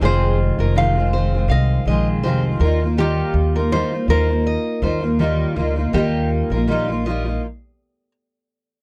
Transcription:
X:1
M:4/4
L:1/16
Q:"Swing 16ths" 1/4=81
K:Eb
V:1 name="Nylon-string guitar"
c4 f4 e8 | G4 c2 B8- B2- | B12 z4 |]
V:2 name="Steel-string acoustic guitar"
A2 z B z2 c2 f2 e z c z B z | G2 z B z2 c2 e2 c z4 z | G2 z B z2 e2 z8 |]
V:3 name="Steel-string acoustic guitar"
[F,,C,E,A,CF]3 [E,A,CF] [F,,C,E,A,CF] [E,A,CF] [E,A,CF] [E,A,CF]3 [E,A,CF]2 [F,,C,E,A,CF]2 [G,B,EF] [B,EF] | [E,G,B,EF]3 [B,EF] [E,G,B,EF] [B,EF] [G,B,EF] [B,EF]3 [G,B,EF] [B,EF] [E,G,B,EF]2 [G,B,EF] [B,EF] | [E,G,B,EF]3 [B,EF] [E,G,B,EF] [B,EF] [G,B,EF] [B,EF] z8 |]
V:4 name="Upright bass" clef=bass
F,,,3 F,,,4- F,,, C,,2 B,,,2 C,,2 E,,2- | E,,2 E,,3 z E,,3 z E,,4 D,,2 | E,,3 B,,,4- B,,, z8 |]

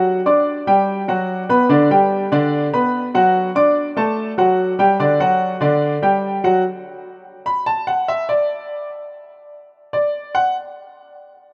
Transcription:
X:1
M:4/4
L:1/8
Q:1/4=146
K:G
V:1 name="Grand piano"
[F,Ff] [Ddd']2 [G,Gg]2 [F,Ff]2 [B,Bb] | [D,Dd] [G,Gg]2 [D,Dd]2 [B,Bb]2 [F,Ff]- | [F,Ff] [Ddd']2 [A,Aa]2 [F,Ff]2 [G,Gg] | [D,Dd] [F,Ff]2 [D,Dd]2 [G,Gg]2 [F,Ff] |
z4 b a f e | d3 z4 z | d2 f z4 z |]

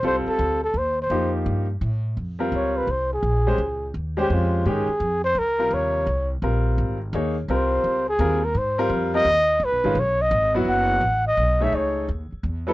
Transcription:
X:1
M:3/4
L:1/8
Q:"Swing" 1/4=169
K:Cdor
V:1 name="Trumpet"
c A2 A c c- | c z4 z | [K:Bbdor] z2 d _c =c A- | A4 z G |
F2 A3 c | B2 d3 z | z6 | c3 A2 B |
c2 z e3 | _c2 d e2 z | [K:F#dor] f3 d2 e | c2 z3 B |]
V:2 name="Grand piano"
[G,CFA]3 z3 | [F,B,EG]3 z3 | [K:Bbdor] z [G,CFB]3 z2 | z [A,DGc] z3 [A,DGc]- |
[A,DGc]2 [E,A,DG] z3 | z [C,G,FB]3 z2 | [G,CFB]3 z [B,EAd] z | [G,CFB]3 z [G,CFB] z |
z [G,CFB]2 [G,CFB] z2 | z [E,A,DF] z3 [_G,_C=E_G]- | [K:F#dor] [_G,_CE_G]2 z3 [A,D^G^c]- | [A,DGc]2 z3 [F,B,EA] |]
V:3 name="Upright bass" clef=bass
C,, z D,,2 E,,2 | F,,2 G,,2 A,,2 | [K:Bbdor] F,,2 D,,2 C,,2 | B,,,2 D,,2 E,,2 |
F,,2 A,, z F,,2 | D,,2 E,,2 C,,2 | B,,,2 A,,,2 E,,2 | C,,2 D,,2 E,,2 |
A,,2 F,,2 E,,2 | (3D,, _C,, A,,, C,,2 A,,,2 | [K:F#dor] F,,,2 A,,,2 B,,,2 | C,,2 D,, z E,,2 |]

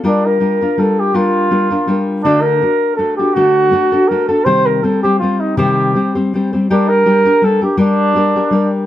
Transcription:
X:1
M:3/4
L:1/8
Q:"Swing" 1/4=162
K:Gm
V:1 name="Muted trumpet"
D B3 A G | F4- F z | D B3 A G | ^F4 B A |
c B A G F E | G4 z2 | D B3 A G | D4- D z |]
V:2 name="Nylon-string guitar"
[G,DFB]2 [G,DFB] [DFB] [G,DFB]2 | [G,DFB]2 [G,DFB] [DFB] [G,DFB]2 | [D,A,D^FA]2 [DF]2 [A,DFA] [DFA] | [D,A,D^FA]2 [A,DFA] [DFA] [A,DFA] [DFA] |
[C,E,G,CGc]2 [G,CGc] [G,CGc] [G,CGc]2 | [C,E,G,CGc]2 [G,CGc] [G,CGc] [G,CGc] [G,CGc] | [G,DGB]2 [G,DGB] [DGB] [G,DGB] [DGB] | [G,DGB]2 [G,DGB] [DGB] [G,DGB]2 |]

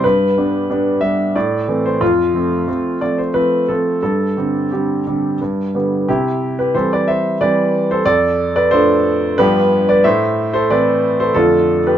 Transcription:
X:1
M:3/4
L:1/16
Q:1/4=90
K:C
V:1 name="Grand piano"
B6 e2 d3 c | F6 d c B2 A2 | A4 G4 z4 | [EG]3 [GB] [Ac] [Bd] [ce]2 [Bd]3 [Ac] |
[Ad]3 [Bd] [Ac]4 [GB]3 [Bd] | [ce]3 [Ac] [Bd]3 [Ac] [FA]3 [GB] |]
V:2 name="Grand piano" clef=bass
G,,2 [G,B,D]2 [G,B,D]2 [G,B,D]2 A,,2 [E,A,C]2 | F,,2 [F,A,C]2 [F,A,C]2 [F,A,C]2 [F,A,C]2 [F,A,C]2 | G,,2 [D,G,C]2 [D,G,C]2 [D,G,C]2 G,,2 [D,G,B,]2 | C,4 [E,G,C]4 [E,G,C]4 |
F,,4 [F,A,D]4 [G,,F,B,D]4 | A,,4 [E,A,C]4 [F,,D,A,D]4 |]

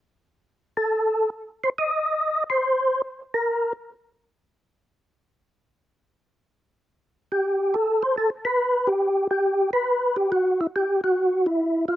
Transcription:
X:1
M:4/4
L:1/8
Q:"Swing" 1/4=140
K:Gdor
V:1 name="Tonewheel organ"
z3 A3 z c | _e3 c3 z B- | B z6 z | z8 |
z2 G2 A c A =B- | =B G2 G2 B2 G | ^F E G F2 E2 =F |]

